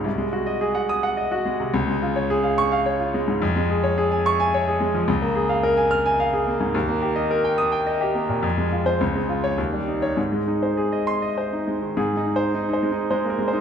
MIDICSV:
0, 0, Header, 1, 2, 480
1, 0, Start_track
1, 0, Key_signature, -5, "major"
1, 0, Tempo, 559180
1, 49, Time_signature, 3, 2, 24, 8
1, 4362, Key_signature, -4, "major"
1, 7248, Tempo, 569801
1, 8208, Tempo, 596421
1, 10128, Tempo, 567644
1, 11513, End_track
2, 0, Start_track
2, 0, Title_t, "Grand piano"
2, 0, Program_c, 0, 0
2, 0, Control_c, 0, 64, 127
2, 36, Note_on_c, 0, 36, 65
2, 66, Control_c, 0, 64, 0
2, 155, Note_on_c, 0, 56, 53
2, 219, Control_c, 0, 64, 127
2, 281, Note_on_c, 0, 66, 49
2, 355, Note_off_c, 0, 56, 0
2, 399, Note_on_c, 0, 75, 53
2, 477, Note_off_c, 0, 66, 0
2, 524, Note_on_c, 0, 68, 60
2, 597, Note_off_c, 0, 75, 0
2, 641, Note_on_c, 0, 78, 54
2, 719, Note_off_c, 0, 68, 0
2, 767, Note_on_c, 0, 87, 77
2, 838, Note_off_c, 0, 78, 0
2, 886, Note_on_c, 0, 78, 60
2, 962, Note_off_c, 0, 87, 0
2, 1005, Note_on_c, 0, 75, 59
2, 1082, Note_off_c, 0, 78, 0
2, 1129, Note_on_c, 0, 66, 51
2, 1201, Note_off_c, 0, 75, 0
2, 1250, Note_on_c, 0, 56, 53
2, 1323, Note_off_c, 0, 66, 0
2, 1372, Note_on_c, 0, 48, 54
2, 1443, Note_off_c, 0, 56, 0
2, 1451, Note_off_c, 0, 36, 0
2, 1491, Note_on_c, 0, 37, 76
2, 1492, Note_off_c, 0, 48, 0
2, 1505, Control_c, 0, 64, 0
2, 1608, Note_on_c, 0, 56, 55
2, 1618, Control_c, 0, 64, 127
2, 1734, Note_on_c, 0, 65, 53
2, 1803, Note_off_c, 0, 56, 0
2, 1853, Note_on_c, 0, 73, 58
2, 1927, Note_off_c, 0, 65, 0
2, 1976, Note_on_c, 0, 68, 67
2, 2047, Note_off_c, 0, 73, 0
2, 2091, Note_on_c, 0, 77, 53
2, 2168, Note_off_c, 0, 68, 0
2, 2214, Note_on_c, 0, 85, 82
2, 2284, Note_off_c, 0, 77, 0
2, 2334, Note_on_c, 0, 77, 65
2, 2406, Note_off_c, 0, 85, 0
2, 2455, Note_on_c, 0, 73, 59
2, 2525, Note_off_c, 0, 77, 0
2, 2571, Note_on_c, 0, 65, 54
2, 2646, Note_off_c, 0, 73, 0
2, 2697, Note_on_c, 0, 56, 56
2, 2765, Note_off_c, 0, 65, 0
2, 2815, Note_on_c, 0, 44, 61
2, 2887, Note_off_c, 0, 56, 0
2, 2899, Note_off_c, 0, 37, 0
2, 2933, Note_on_c, 0, 41, 76
2, 2934, Note_off_c, 0, 44, 0
2, 2951, Control_c, 0, 64, 0
2, 3053, Note_on_c, 0, 56, 61
2, 3095, Control_c, 0, 64, 127
2, 3174, Note_on_c, 0, 68, 53
2, 3244, Note_off_c, 0, 56, 0
2, 3292, Note_on_c, 0, 73, 62
2, 3364, Note_off_c, 0, 68, 0
2, 3414, Note_on_c, 0, 68, 69
2, 3483, Note_off_c, 0, 73, 0
2, 3533, Note_on_c, 0, 80, 60
2, 3604, Note_off_c, 0, 68, 0
2, 3657, Note_on_c, 0, 85, 89
2, 3723, Note_off_c, 0, 80, 0
2, 3775, Note_on_c, 0, 80, 74
2, 3844, Note_off_c, 0, 85, 0
2, 3900, Note_on_c, 0, 73, 67
2, 3962, Note_off_c, 0, 80, 0
2, 4013, Note_on_c, 0, 68, 57
2, 4084, Note_off_c, 0, 73, 0
2, 4124, Note_on_c, 0, 56, 57
2, 4200, Note_off_c, 0, 68, 0
2, 4243, Note_on_c, 0, 53, 61
2, 4314, Note_off_c, 0, 56, 0
2, 4328, Note_off_c, 0, 41, 0
2, 4360, Note_on_c, 0, 37, 74
2, 4362, Note_off_c, 0, 53, 0
2, 4375, Control_c, 0, 64, 0
2, 4480, Note_on_c, 0, 58, 63
2, 4503, Control_c, 0, 64, 127
2, 4595, Note_on_c, 0, 68, 57
2, 4669, Note_off_c, 0, 58, 0
2, 4715, Note_on_c, 0, 77, 60
2, 4787, Note_off_c, 0, 68, 0
2, 4836, Note_on_c, 0, 70, 69
2, 4907, Note_off_c, 0, 77, 0
2, 4953, Note_on_c, 0, 80, 60
2, 5027, Note_off_c, 0, 70, 0
2, 5072, Note_on_c, 0, 89, 79
2, 5146, Note_off_c, 0, 80, 0
2, 5199, Note_on_c, 0, 80, 69
2, 5265, Note_off_c, 0, 89, 0
2, 5321, Note_on_c, 0, 77, 66
2, 5388, Note_off_c, 0, 80, 0
2, 5438, Note_on_c, 0, 68, 53
2, 5509, Note_off_c, 0, 77, 0
2, 5553, Note_on_c, 0, 58, 53
2, 5627, Note_off_c, 0, 68, 0
2, 5670, Note_on_c, 0, 44, 59
2, 5745, Note_off_c, 0, 58, 0
2, 5758, Note_off_c, 0, 37, 0
2, 5790, Note_on_c, 0, 39, 75
2, 5792, Note_off_c, 0, 44, 0
2, 5809, Control_c, 0, 64, 0
2, 5909, Note_on_c, 0, 58, 62
2, 5945, Control_c, 0, 64, 127
2, 6026, Note_on_c, 0, 67, 50
2, 6104, Note_off_c, 0, 58, 0
2, 6143, Note_on_c, 0, 75, 63
2, 6223, Note_off_c, 0, 67, 0
2, 6272, Note_on_c, 0, 70, 66
2, 6342, Note_off_c, 0, 75, 0
2, 6389, Note_on_c, 0, 79, 57
2, 6467, Note_off_c, 0, 70, 0
2, 6506, Note_on_c, 0, 87, 81
2, 6587, Note_off_c, 0, 79, 0
2, 6626, Note_on_c, 0, 79, 64
2, 6706, Note_off_c, 0, 87, 0
2, 6752, Note_on_c, 0, 75, 60
2, 6827, Note_off_c, 0, 79, 0
2, 6875, Note_on_c, 0, 67, 58
2, 6950, Note_off_c, 0, 75, 0
2, 6994, Note_on_c, 0, 58, 51
2, 7072, Note_off_c, 0, 67, 0
2, 7117, Note_on_c, 0, 46, 57
2, 7193, Note_off_c, 0, 58, 0
2, 7210, Note_off_c, 0, 39, 0
2, 7233, Note_on_c, 0, 41, 69
2, 7242, Note_off_c, 0, 46, 0
2, 7263, Control_c, 0, 64, 0
2, 7362, Note_on_c, 0, 56, 54
2, 7420, Control_c, 0, 64, 127
2, 7480, Note_on_c, 0, 65, 49
2, 7556, Note_off_c, 0, 56, 0
2, 7598, Note_on_c, 0, 72, 72
2, 7674, Note_off_c, 0, 65, 0
2, 7704, Note_off_c, 0, 41, 0
2, 7721, Note_off_c, 0, 72, 0
2, 7724, Note_on_c, 0, 37, 69
2, 7739, Control_c, 0, 64, 0
2, 7847, Note_on_c, 0, 56, 48
2, 7868, Control_c, 0, 64, 127
2, 7962, Note_on_c, 0, 65, 49
2, 8037, Note_off_c, 0, 56, 0
2, 8085, Note_on_c, 0, 73, 67
2, 8156, Note_off_c, 0, 65, 0
2, 8192, Note_off_c, 0, 37, 0
2, 8204, Note_on_c, 0, 39, 66
2, 8207, Note_off_c, 0, 73, 0
2, 8219, Control_c, 0, 64, 0
2, 8324, Note_on_c, 0, 55, 41
2, 8360, Control_c, 0, 64, 127
2, 8445, Note_on_c, 0, 63, 44
2, 8514, Note_off_c, 0, 55, 0
2, 8562, Note_on_c, 0, 73, 62
2, 8635, Note_off_c, 0, 63, 0
2, 8667, Note_off_c, 0, 39, 0
2, 8681, Note_on_c, 0, 44, 60
2, 8682, Note_off_c, 0, 73, 0
2, 8700, Control_c, 0, 64, 0
2, 8801, Note_on_c, 0, 56, 46
2, 8852, Control_c, 0, 64, 127
2, 8925, Note_on_c, 0, 63, 43
2, 8995, Note_off_c, 0, 56, 0
2, 9046, Note_on_c, 0, 72, 47
2, 9118, Note_off_c, 0, 63, 0
2, 9165, Note_on_c, 0, 68, 51
2, 9240, Note_off_c, 0, 72, 0
2, 9287, Note_on_c, 0, 75, 47
2, 9360, Note_off_c, 0, 68, 0
2, 9405, Note_on_c, 0, 84, 66
2, 9481, Note_off_c, 0, 75, 0
2, 9526, Note_on_c, 0, 75, 55
2, 9600, Note_off_c, 0, 84, 0
2, 9650, Note_on_c, 0, 72, 48
2, 9720, Note_off_c, 0, 75, 0
2, 9773, Note_on_c, 0, 63, 44
2, 9842, Note_off_c, 0, 72, 0
2, 9891, Note_on_c, 0, 56, 39
2, 9963, Note_off_c, 0, 63, 0
2, 10007, Note_on_c, 0, 51, 43
2, 10081, Note_off_c, 0, 56, 0
2, 10094, Note_off_c, 0, 44, 0
2, 10125, Note_off_c, 0, 51, 0
2, 10129, Note_on_c, 0, 44, 64
2, 10129, Note_on_c, 0, 68, 61
2, 10142, Control_c, 0, 64, 0
2, 10266, Control_c, 0, 64, 127
2, 10294, Note_on_c, 0, 63, 57
2, 10364, Note_off_c, 0, 63, 0
2, 10376, Note_on_c, 0, 63, 46
2, 10387, Note_off_c, 0, 68, 0
2, 10458, Note_on_c, 0, 72, 71
2, 10566, Note_off_c, 0, 63, 0
2, 10615, Note_on_c, 0, 63, 59
2, 10710, Note_off_c, 0, 72, 0
2, 10723, Note_off_c, 0, 63, 0
2, 10736, Note_on_c, 0, 63, 50
2, 10774, Note_on_c, 0, 72, 56
2, 10853, Note_on_c, 0, 56, 50
2, 10916, Note_off_c, 0, 63, 0
2, 10928, Note_on_c, 0, 63, 51
2, 11026, Note_off_c, 0, 72, 0
2, 11042, Note_off_c, 0, 56, 0
2, 11089, Note_on_c, 0, 56, 56
2, 11089, Note_on_c, 0, 72, 58
2, 11183, Note_off_c, 0, 63, 0
2, 11207, Note_on_c, 0, 58, 47
2, 11251, Note_on_c, 0, 70, 47
2, 11280, Note_off_c, 0, 56, 0
2, 11326, Note_on_c, 0, 56, 51
2, 11327, Note_off_c, 0, 58, 0
2, 11344, Note_off_c, 0, 72, 0
2, 11404, Note_on_c, 0, 72, 56
2, 11409, Note_off_c, 0, 70, 0
2, 11448, Note_on_c, 0, 63, 59
2, 11513, Note_off_c, 0, 44, 0
2, 11513, Note_off_c, 0, 56, 0
2, 11513, Note_off_c, 0, 63, 0
2, 11513, Note_off_c, 0, 72, 0
2, 11513, End_track
0, 0, End_of_file